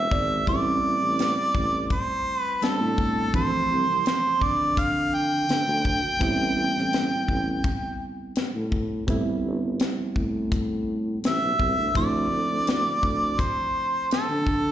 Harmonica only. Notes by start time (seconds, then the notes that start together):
Already playing: E5
0.49 D5
1.92 C5
2.39 B4
2.64 A4
3.35 C5
4.07 C5
4.43 D5
4.79 F5
5.14 G5
11.26 E5
11.97 D5
13.40 C5
14.12 A4